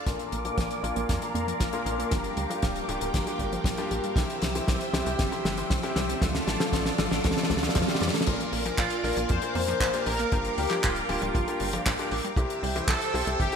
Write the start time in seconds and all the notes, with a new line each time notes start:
0.06 A#1 A#2 F3 A#3 D4 F4 A#4 D5 F5 D6, kick, snare, closed hi-hat
0.19 closed hi-hat
0.32 A#1 A#3, closed hi-hat
0.45 A#2 F3 A#3 D4 F4 A#4, closed hi-hat
0.58 A#1 F3, kick, snare, closed hi-hat
0.71 closed hi-hat
0.83 A#1 A#2 A#3 D4 F4 A#4 D5, closed hi-hat
0.96 A#1 A#3, closed hi-hat
1.09 F2 F3, kick, snare, closed hi-hat
1.22 A#2 A#3 D4 F4 A#4, closed hi-hat
1.35 F2 A#3, closed hi-hat
1.47 F3, closed hi-hat
1.60 A#1 F3, kick, snare, closed hi-hat
1.73 A#2 A#3 D4 F4 A#4, closed hi-hat
1.86 A#1 D5, closed hi-hat
1.99 A#3, closed hi-hat
2.11 G1 G2 F3 A#3 D4 F4 G4 G5 D6, kick, snare, closed hi-hat
2.24 closed hi-hat
2.37 D2 G3, closed hi-hat
2.50 G2 F3 A#3 D4 F4 G4, closed hi-hat
2.62 D1 F3, kick, snare, closed hi-hat
2.76 closed hi-hat
2.88 D1 G2 A#3 D4 F4 G4, closed hi-hat
3.01 D1 G3, closed hi-hat
3.14 G1 F3, kick, snare, closed hi-hat
3.27 G2 A#3 D4 F4 G4, closed hi-hat
3.39 G1 G3, kick, closed hi-hat
3.53 F3, closed hi-hat
3.64 A#1 F3, kick, snare, closed hi-hat
3.77 G2 A#3 D4 F4 G4, closed hi-hat
3.91 A#1 G4, closed hi-hat
4.04 G3, closed hi-hat
4.16 C2 C3 E3 G3 C4 E4 G4 C5 E5 E6, kick, snare, closed hi-hat
4.30 closed hi-hat
4.42 C2 G3, snare, closed hi-hat
4.55 C3 E3 G3 C4 E4 G4, closed hi-hat
4.67 C2 E3, kick, snare, closed hi-hat
4.80 closed hi-hat
4.93 C2 C3 G3 C4 E4 G4 C5, snare, closed hi-hat
5.06 C2 G3, closed hi-hat
5.19 G1 E3, kick, snare, closed hi-hat
5.32 C3 G3 C4 E4 G4, closed hi-hat
5.45 G1 G3, snare, closed hi-hat
5.57 E3, closed hi-hat
5.70 C2 E3, kick, snare, closed hi-hat
5.83 C3 G3 C4 E4 G4, closed hi-hat
5.96 C2 C5, snare, closed hi-hat
6.09 G3, closed hi-hat
6.21 D2 D3 F3 A3 D4 F4 A4 D5 F5 D6, kick, snare, closed hi-hat
6.35 snare, closed hi-hat
6.47 A1 A3, snare, closed hi-hat
6.60 D3 F3 A3 D4 F4 A4, snare, closed hi-hat
6.73 A1 F3, kick, snare, closed hi-hat
6.86 snare, closed hi-hat
6.98 A1 D3 A3 D4 F4 A4 D5, snare, closed hi-hat
7.11 A1 A3, snare, closed hi-hat
7.24 D2 F3, kick, snare, closed hi-hat
7.31 snare
7.37 D3 A3 D4 F4 A4, snare, closed hi-hat
7.43 snare
7.50 D2 A3, kick, snare, closed hi-hat
7.57 snare
7.62 D3 F3 A3 D4 F4 A4, snare, closed hi-hat
7.69 snare
7.75 F2 F3, kick, snare, closed hi-hat
7.82 snare
7.88 D3 A3 D4 F4 G4, snare, closed hi-hat
7.95 snare
8.00 F2 D5, snare, closed hi-hat
8.08 snare
8.14 A3, snare, closed hi-hat
8.21 snare
8.26 A#1 A#2 F3 A#3 D4 F4 A#4 D5 F5 D6, kick, closed hi-hat, crash
8.40 closed hi-hat
8.52 A#1 A#3, open hi-hat
8.65 A#2 F3 A#3 D4 F4 A#4, closed hi-hat
8.78 A#1 F3 F4, kick, clap, closed hi-hat
8.90 closed hi-hat
9.04 A#1 A#2 A#3 D4 F4 A#4 D5, open hi-hat
9.17 A#1 A#3, closed hi-hat
9.29 F2 F3 C5, kick, closed hi-hat
9.42 A#2 A#3 D4 F4 A#4, closed hi-hat
9.55 F2 A#3, open hi-hat
9.68 A#2 F3 A#3 D4 F4 A#4, closed hi-hat
9.80 A#1 F3, kick, clap, closed hi-hat
9.93 A#2 A#3 D4 F4 G4, closed hi-hat
10.06 A#1 A#4 D5, open hi-hat
10.19 A#3, closed hi-hat
10.32 G1 G2 F3 A#3 D4 F4 G4 G5, kick, closed hi-hat
10.45 closed hi-hat
10.58 D2 G3 G4, open hi-hat
10.70 G2 F3 A#3 D4 F4 G4, clap, closed hi-hat
10.83 D1 F3 F4, kick, clap, closed hi-hat
10.96 closed hi-hat
11.09 D1 G2 A#3 D4 F4 G4, open hi-hat
11.22 D1 G3, closed hi-hat
11.35 G1 F3, kick, closed hi-hat
11.47 G2 A#3 D4 F4 G4, closed hi-hat
11.60 G1 G3, open hi-hat
11.73 G2 F3 A#3 D4 F4 G4, closed hi-hat
11.86 A#1 F3, kick, clap, closed hi-hat
11.99 G2 A#3 D4 F4 G4, closed hi-hat
12.11 A#1 G4, open hi-hat
12.24 G3, closed hi-hat
12.36 C2 C3 E3 G3 C4 E4 G4 C5 E5 G5 E6, kick, closed hi-hat
12.50 closed hi-hat
12.63 C2 G3, open hi-hat
12.76 C3 E3 G3 C4 E4 G4, closed hi-hat
12.88 C2 E3 A4, kick, clap, closed hi-hat
13.01 closed hi-hat
13.14 C2 C3 G3 C4 E4 G4 C5, open hi-hat
13.27 C2 G3, closed hi-hat
13.40 G1 E3 G4, kick, closed hi-hat
13.52 C3 G3 C4 E4 G4, closed hi-hat